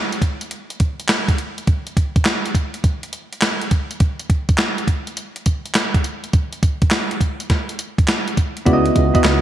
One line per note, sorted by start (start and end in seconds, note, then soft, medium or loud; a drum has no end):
0.12 closed hi-hat medium
0.22 kick medium
0.22 closed hi-hat medium
0.41 closed hi-hat medium
0.51 closed hi-hat medium
0.70 closed hi-hat soft
0.80 kick medium
0.80 closed hi-hat medium
1.00 closed hi-hat soft
1.08 snare loud
1.08 clap medium
1.08 closed hi-hat medium
1.28 kick medium
1.28 closed hi-hat medium
1.38 closed hi-hat medium
1.58 closed hi-hat medium
1.67 kick loud
1.67 closed hi-hat medium
1.87 closed hi-hat soft
1.97 kick medium
1.97 closed hi-hat medium
2.16 kick loud
2.16 closed hi-hat soft
2.25 snare loud
2.25 clap medium
2.25 closed hi-hat medium
2.46 closed hi-hat medium
2.55 kick medium
2.55 closed hi-hat medium
2.74 closed hi-hat medium
2.84 kick medium
2.84 closed hi-hat medium
3.03 closed hi-hat medium
3.13 closed hi-hat medium
3.33 closed hi-hat soft
3.41 snare medium
3.41 clap medium
3.41 closed hi-hat medium
3.61 closed hi-hat medium
3.71 kick medium
3.71 closed hi-hat medium
3.91 closed hi-hat soft
4.00 kick loud
4.00 closed hi-hat medium
4.19 closed hi-hat soft
4.30 kick medium
4.30 closed hi-hat medium
4.49 kick medium
4.49 closed hi-hat soft
4.58 snare loud
4.58 clap medium
4.58 closed hi-hat medium
4.78 closed hi-hat medium
4.88 kick medium
4.88 closed hi-hat medium
5.07 closed hi-hat soft
5.17 closed hi-hat medium
5.36 closed hi-hat medium
5.46 kick medium
5.46 closed hi-hat medium
5.66 closed hi-hat soft
5.74 snare loud
5.74 clap medium
5.74 closed hi-hat medium
5.94 kick loud
5.94 closed hi-hat medium
6.04 closed hi-hat medium
6.24 closed hi-hat soft
6.33 kick loud
6.33 closed hi-hat medium
6.53 closed hi-hat medium
6.63 kick medium
6.63 closed hi-hat medium
6.82 kick loud
6.82 closed hi-hat soft
6.91 snare loud
6.91 clap medium
6.91 closed hi-hat medium
7.11 closed hi-hat medium
7.21 kick medium
7.21 closed hi-hat medium
7.40 closed hi-hat medium
7.50 kick medium
7.50 snare medium
7.50 closed hi-hat medium
7.69 closed hi-hat medium
7.79 closed hi-hat medium
7.98 kick medium
7.98 closed hi-hat soft
8.08 snare loud
8.08 clap medium
8.08 closed hi-hat medium
8.28 closed hi-hat medium
8.37 kick medium
8.37 closed hi-hat medium
8.57 closed hi-hat soft
8.65 8.90 C#2 loud
8.65 9.11 B3 medium
8.65 9.11 E4 medium
8.65 9.11 F#4 medium
8.65 8.75 D5 medium
8.65 kick loud
8.65 closed hi-hat medium
8.73 9.14 D#5 loud
8.86 closed hi-hat soft
8.96 9.11 C#2 loud
8.96 kick medium
8.96 closed hi-hat medium
9.14 9.41 B3 medium
9.14 9.41 E4 medium
9.14 9.41 F#4 medium
9.14 9.41 D#5 medium
9.14 kick medium
9.14 closed hi-hat soft
9.24 9.40 C#2 medium
9.24 snare loud
9.24 clap medium
9.24 closed hi-hat medium